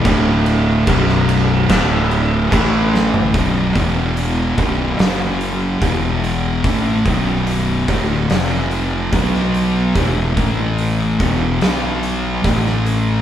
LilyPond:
<<
  \new Staff \with { instrumentName = "Distorted electric guitar" } { \clef bass \time 4/4 \key b \minor \tempo 4 = 72 <d, a, d>4 <b,, fis, b,>4 <d, a, d>4 <a, e a>4 | <b,, fis, b,>8 <e, b, e>4 <b,, fis, b,>8 <fis, cis fis>4 <e, b, e>4 | <a, e a>8 <b,, fis, b,>4 <d, a, d>8 <f, c f>4 <b, fis b>4 | <e, b, e>8 <a, e a>4 <e, b, e>8 <b, fis b>4 <a, e a>4 | }
  \new Staff \with { instrumentName = "Distorted electric guitar" } { \clef bass \time 4/4 \key b \minor <d, a, d>4 <b,, fis, b,>4 <d, a, d>4 <a, e a>4 | <b,, fis, b,>8 <e, b, e>4 <b,, fis, b,>8 <fis, cis fis>4 <e, b, e>4 | <a, e a>8 <b,, fis, b,>4 <d, a, d>8 <f, c f>4 <b, fis b>4 | <e, b, e>8 <a, e a>4 <e, b, e>8 <b, fis b>4 <a, e a>4 | }
  \new Staff \with { instrumentName = "Overdriven electric guitar" } { \clef bass \time 4/4 \key b \minor <d, a, d>4 <b,, fis, b,>4 <d, a, d>4 <a, e a>4 | r1 | r1 | r1 | }
  \new Staff \with { instrumentName = "Fingered electric bass" } { \clef bass \time 4/4 \key b \minor d,,4 b,,,4 d,,4 a,,4 | b,,,8 e,,4 b,,,8 fis,,4 e,,4 | a,,8 b,,,4 d,,8 f,,4 b,,4 | e,,8 a,,4 e,,8 b,,4 a,,4 | }
  \new DrumStaff \with { instrumentName = "Drums" } \drummode { \time 4/4 <cymc bd>8 cymc8 <cymc bd>16 sn16 cymc8 <cymc bd sn>8 cymc8 <cymc bd>8 sn16 tomfh16 | <hho bd>8 <hho bd>8 hho8 <hho bd>8 <hho sn>8 hho8 <hho bd>8 hho8 | <hho bd>8 <hho bd>8 hho8 <hho bd>8 <hho sn>8 hho8 <hho bd>16 sn16 hho8 | <hho bd>8 <hho bd>8 hho8 <hho bd>8 <hho sn>8 hho8 <hho bd>16 sn16 hho8 | }
>>